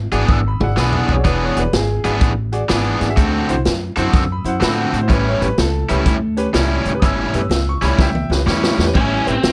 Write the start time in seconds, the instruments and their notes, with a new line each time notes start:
0.12 upright bass G#1, overdriven electric guitar E3 B3 D4 G#4, upright piano F#4 G#4 D5, closed hi-hat
0.27 upright bass G#1, upright piano D#6, kick
0.31 upright piano E6
0.48 upright piano B5
0.60 upright bass G#1, upright piano F#4 G#4 D5 F#5, mid tom
0.76 upright bass B1, overdriven electric guitar E3 B3 D4 G#4, upright piano B5, snare
0.93 upright piano F#5, floor tom
1.08 upright bass B1, upright piano G#4 D5, floor tom
1.12 upright piano C#5
1.17 upright piano F#4 G#4 D5
1.24 upright bass E1, overdriven electric guitar E3 B3 D4 G#4, upright piano B4, kick, closed hi-hat
1.43 upright piano C#5
1.56 upright bass E1, upright piano F#4 G#4 B4 D5, closed hi-hat
1.73 upright bass G#1, upright piano G#4, snare, closed hi-hat
2.04 upright bass G#1, overdriven electric guitar E3 B3 D4 G#4, upright piano F#4 G#4 E5, closed hi-hat
2.21 upright bass A1, kick, closed hi-hat
2.52 upright piano F#4 G#4 D5, closed hi-hat
2.69 upright bass G#1, overdriven electric guitar E3 B3 D4 G#4, snare, closed hi-hat
3.00 upright bass G#1, upright piano G#4 D5, snare, closed hi-hat
3.09 upright piano F#4 G#4 E5
3.16 upright bass D2, overdriven electric guitar D3 C4 F#4 A4, kick, closed hi-hat
3.49 upright bass C2, upright piano E4 F#4 C5, closed hi-hat
3.65 upright bass F#2, snare, closed hi-hat
3.96 upright bass F#2, overdriven electric guitar D3 C4 F#4 A4, upright piano E4 F#4 C5, closed hi-hat
4.12 upright bass F#2, upright piano D#6, kick, snare, closed hi-hat
4.16 upright piano E6
4.32 upright piano B5
4.44 upright bass F#2, upright piano E4 F#4 C5 F#5, closed hi-hat
4.60 upright bass A2, overdriven electric guitar D3 C4 F#4 A4, upright piano B5, snare, closed hi-hat
4.80 upright piano F#5
4.92 upright bass A2, upright piano F#4 C5, closed hi-hat
5.01 upright piano E4 F#4 C5
5.08 upright bass A1, overdriven electric guitar A2 G3 C#4 E4, kick, closed hi-hat
5.13 upright piano B4
5.29 upright piano C#5
5.41 upright bass A1, upright piano C#4 G4 B4, closed hi-hat
5.45 upright piano B4
5.58 upright bass C#2, upright piano A4, snare, closed hi-hat
5.89 upright bass C#2, overdriven electric guitar A2 G3 C#4 E4, upright piano C#4 G4 B4, closed hi-hat
6.06 upright bass D2, kick, closed hi-hat
6.37 upright piano C#4 G4 B4, closed hi-hat
6.54 upright bass C#2, overdriven electric guitar A2 G3 C#4 E4, snare, closed hi-hat
6.85 upright bass C#2, upright piano G4 C#5, closed hi-hat
6.94 upright piano C#4 G4 B4
7.00 upright bass G1, overdriven electric guitar A2 G3 C#4 E4, upright piano D#6, kick, closed hi-hat
7.04 upright piano E6
7.34 upright bass G1, upright piano C#4 G4 B4, closed hi-hat
7.49 upright bass C#2, snare, closed hi-hat
7.69 upright piano C#6
7.82 upright bass C#2, overdriven electric guitar A2 G3 C#4 E4, upright piano C#4 G4 C#5 B5, snare, closed hi-hat
7.99 upright bass C#2, upright piano E5 G5, kick, snare
8.15 high tom
8.30 upright bass C#2, upright piano C#4 G4 B4, snare
8.46 upright bass E2, overdriven electric guitar A2 G3 C#4 E4, snare
8.64 snare
8.78 upright bass E2, upright piano G4 C#5, snare
8.86 upright piano C#4 G4 B4
8.94 upright bass A1, overdriven electric guitar A2 G3 C#4 E4, lead electric guitar C#4, kick, crash
9.26 upright bass A1, lead electric guitar C4, upright piano C#4 G4 B4, closed hi-hat
9.43 upright bass C#2, lead electric guitar C4, snare, closed hi-hat